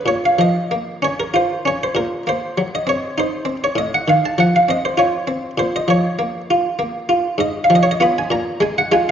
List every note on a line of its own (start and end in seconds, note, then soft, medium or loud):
0.06 0.37 A#2 medium
0.06 0.23 C#5 medium
0.25 0.40 F5 medium
0.38 0.72 F3 soft
0.38 1.03 D#5 medium
0.71 1.04 A#3 soft
1.02 1.35 C#4 soft
1.02 1.19 C#5 medium
1.20 1.35 A#4 medium
1.34 1.67 F4 soft
1.34 1.66 C5 medium
1.65 1.96 C#4 soft
1.65 1.82 C#5 medium
1.83 1.98 C5 medium
1.95 2.25 A#2 medium
1.95 2.22 A#4 medium
2.27 2.59 A#3 soft
2.27 2.67 C5 medium
2.57 2.89 F#3 soft
2.75 2.89 D#5 medium
2.87 3.18 C4 medium
2.87 3.18 C#5 medium
3.18 3.49 D#4 soft
3.18 3.57 C5 medium
3.45 3.76 C4 soft
3.64 3.78 C#5 medium
3.76 4.06 A2 medium
3.76 3.93 D#5 medium
3.95 4.09 F#5 medium
4.08 4.40 D#3 soft
4.08 4.24 F5 medium
4.26 4.40 A5 medium
4.38 4.70 F3 soft
4.38 4.55 F#5 medium
4.56 4.70 F5 medium
4.69 5.00 C4 medium
4.69 4.85 D#5 medium
4.85 5.00 C5 medium
4.98 5.30 F4 medium
4.98 5.50 C#5 medium
5.28 5.59 C4 soft
5.58 5.88 A#2 medium
5.58 5.75 C5 medium
5.76 5.90 D#5 medium
5.88 6.20 F3 soft
5.88 6.41 C#5 medium
6.19 6.51 A#3 soft
6.51 6.82 F4 medium
6.79 7.11 A#3 medium
7.09 7.39 F4 medium
7.38 7.69 G#2 medium
7.38 7.65 D#5 medium
7.64 7.74 F5 medium
7.70 8.02 F3 medium
7.75 7.84 D#5 medium
7.83 7.92 C#5 medium
7.91 8.00 D#5 medium
8.00 8.22 B3 medium
8.00 8.23 F4 soft
8.00 8.17 B5 medium
8.18 8.32 G#5 loud
8.30 8.60 A#2 medium
8.30 8.62 A#5 loud
8.60 8.90 G#3 medium
8.60 8.77 G#5 loud
8.78 8.93 F#5 loud
8.92 9.11 G#3 medium
8.92 9.11 F4 medium
8.92 9.08 G#5 loud